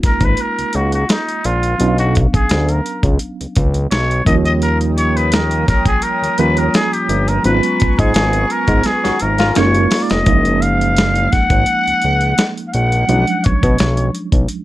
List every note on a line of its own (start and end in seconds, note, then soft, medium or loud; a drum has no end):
0.00 1.75 G#3 medium
0.00 1.75 A#3 medium
0.00 1.76 C#4 medium
0.00 1.76 D#4 medium
0.00 1.77 F4 medium
0.00 kick medium
0.00 snare soft
0.00 closed hi-hat medium
0.04 0.11 G#1 soft
0.04 0.26 A#4 loud
0.21 0.36 G#1 medium
0.21 0.43 B4 medium
0.21 kick medium
0.21 closed hi-hat soft
0.37 closed hi-hat medium
0.41 0.77 A#4 loud
0.58 0.65 C#2 soft
0.58 closed hi-hat soft
0.73 1.05 C#2 medium
0.73 0.93 F#4 medium
0.73 closed hi-hat medium
0.92 1.12 F#4 medium
0.92 closed hi-hat soft
1.09 1.47 D#4 medium
1.09 snare loud
1.09 closed hi-hat medium
1.29 closed hi-hat soft
1.44 1.75 A#1 medium
1.44 1.99 F4 medium
1.44 closed hi-hat medium
1.63 closed hi-hat soft
1.78 2.27 B1 loud
1.78 4.22 F#3 medium
1.78 4.22 B3 medium
1.78 4.23 C#4 medium
1.78 4.23 D4 medium
1.78 1.87 E4 medium
1.78 closed hi-hat medium
1.88 4.27 F5 medium
1.98 2.15 F#4 medium
1.98 closed hi-hat medium
2.15 kick medium
2.15 closed hi-hat medium
2.34 2.71 G#4 medium
2.34 kick loud
2.34 closed hi-hat soft
2.49 2.81 D2 loud
2.49 snare loud
2.49 closed hi-hat medium
2.69 3.04 A#4 medium
2.69 closed hi-hat medium
2.86 closed hi-hat medium
3.03 3.18 C#2 medium
3.03 kick medium
3.03 closed hi-hat soft
3.19 closed hi-hat medium
3.41 3.47 C#2 soft
3.41 closed hi-hat soft
3.56 3.87 C#2 medium
3.56 kick medium
3.56 closed hi-hat medium
3.74 closed hi-hat soft
3.91 4.22 B1 medium
3.91 4.24 C#5 loud
3.91 snare loud
3.91 closed hi-hat medium
4.11 closed hi-hat soft
4.25 5.65 D#2 loud
4.25 6.33 F3 medium
4.25 6.34 G3 medium
4.25 6.34 A#3 medium
4.25 6.35 C#4 medium
4.25 4.34 E4 medium
4.25 4.35 D#5 medium
4.25 kick loud
4.25 closed hi-hat medium
4.35 6.38 F4 medium
4.45 4.53 D#5 medium
4.45 closed hi-hat soft
4.62 4.78 A#4 loud
4.62 7.41 C#5 medium
4.62 7.41 G5 medium
4.62 9.52 A#5 medium
4.62 7.41 D#6 medium
4.62 closed hi-hat medium
4.81 closed hi-hat medium
4.98 5.18 C#5 medium
4.98 closed hi-hat medium
5.17 5.35 B4 medium
5.17 closed hi-hat soft
5.32 5.68 A#4 medium
5.32 snare loud
5.32 closed hi-hat loud
5.51 closed hi-hat soft
5.68 5.86 A#4 medium
5.68 kick medium
5.68 snare soft
5.68 closed hi-hat medium
5.86 6.04 G#4 medium
5.86 kick medium
5.86 closed hi-hat medium
6.02 6.41 A#4 loud
6.02 closed hi-hat medium
6.22 6.29 D#2 medium
6.22 closed hi-hat medium
6.38 6.69 D#2 medium
6.38 7.44 F3 soft
6.38 7.44 G3 soft
6.38 7.44 A#3 soft
6.38 7.44 C#4 soft
6.38 7.45 F4 medium
6.38 6.60 B4 medium
6.38 closed hi-hat medium
6.57 6.76 A#4 medium
6.57 closed hi-hat medium
6.74 6.94 G#4 medium
6.74 snare loud
6.74 closed hi-hat medium
6.93 7.30 G4 medium
6.93 closed hi-hat soft
7.09 7.39 G1 medium
7.09 closed hi-hat medium
7.28 7.44 A#4 medium
7.28 closed hi-hat medium
7.43 7.61 G#1 loud
7.43 9.51 F#3 medium
7.43 9.52 G#3 medium
7.43 9.54 B3 medium
7.43 9.52 B3 medium
7.43 9.52 C#4 medium
7.43 9.53 F4 medium
7.43 8.00 B4 medium
7.43 10.24 G#5 medium
7.43 10.24 C#6 medium
7.43 closed hi-hat medium
7.63 closed hi-hat medium
7.80 7.89 G#2 medium
7.80 kick loud
7.80 closed hi-hat medium
7.99 8.13 G#2 loud
7.99 8.53 G#4 medium
7.99 kick loud
7.99 closed hi-hat medium
8.14 8.46 G#1 loud
8.14 snare loud
8.14 closed hi-hat medium
8.33 closed hi-hat soft
8.50 8.88 A#4 medium
8.50 closed hi-hat medium
8.68 8.83 G#2 medium
8.68 kick medium
8.68 closed hi-hat medium
8.83 9.23 G#4 loud
8.83 snare medium
8.83 closed hi-hat medium
9.04 9.12 G#1 soft
9.04 9.18 D#3 medium
9.04 9.18 C#4 medium
9.04 9.18 F#4 medium
9.04 snare medium
9.04 closed hi-hat soft
9.19 9.52 G#1 medium
9.19 9.55 A#4 medium
9.19 closed hi-hat medium
9.38 9.83 C#3 medium
9.38 9.83 A#3 medium
9.38 9.83 F4 loud
9.38 snare medium
9.38 closed hi-hat medium
9.55 9.87 F#1 loud
9.55 10.24 G#3 medium
9.55 10.25 A#3 medium
9.55 10.26 C#4 medium
9.55 10.27 D#4 medium
9.55 10.27 F4 medium
9.55 10.25 A#4 medium
9.55 10.04 C#5 loud
9.55 10.25 F5 medium
9.55 snare loud
9.55 closed hi-hat medium
9.74 closed hi-hat soft
9.91 snare loud
9.91 open hi-hat medium
10.02 10.12 D5 medium
10.10 10.25 F1 medium
10.10 10.63 D#5 medium
10.10 snare loud
10.10 closed hi-hat medium
10.26 11.29 F#1 loud
10.26 13.06 F3 medium
10.26 13.04 G#3 medium
10.26 13.05 A#3 medium
10.26 13.05 C#4 medium
10.26 13.06 D#4 medium
10.26 kick loud
10.26 closed hi-hat medium
10.45 closed hi-hat medium
10.61 11.33 F5 medium
10.61 closed hi-hat medium
10.81 closed hi-hat soft
10.97 snare loud
10.97 closed hi-hat medium
11.15 closed hi-hat soft
11.32 11.41 G#1 soft
11.32 12.50 F#5 loud
11.32 kick medium
11.32 snare soft
11.32 closed hi-hat medium
11.50 11.65 G#1 medium
11.50 kick medium
11.50 closed hi-hat soft
11.66 closed hi-hat medium
11.87 11.94 C#2 soft
11.87 closed hi-hat soft
12.02 12.34 C#2 medium
12.02 closed hi-hat medium
12.21 closed hi-hat soft
12.38 snare loud
12.38 closed hi-hat medium
12.57 closed hi-hat soft
12.67 12.74 F5 medium
12.73 13.05 A#1 medium
12.73 13.46 F#5 loud
12.73 closed hi-hat medium
12.92 closed hi-hat soft
13.07 13.25 B1 loud
13.07 14.64 F#3 medium
13.07 14.64 G#3 medium
13.07 14.64 C#4 medium
13.07 14.64 D4 medium
13.07 13.17 E4 soft
13.07 closed hi-hat medium
13.18 14.64 F3 medium
13.27 closed hi-hat medium
13.44 13.54 B2 medium
13.44 14.15 C#5 medium
13.44 kick medium
13.44 closed hi-hat medium
13.63 13.77 B2 medium
13.63 kick loud
13.63 closed hi-hat soft
13.78 14.10 B1 loud
13.78 snare loud
13.78 closed hi-hat medium
13.97 closed hi-hat soft
14.15 closed hi-hat medium
14.32 14.47 B1 loud
14.32 kick medium
14.32 closed hi-hat soft
14.48 closed hi-hat medium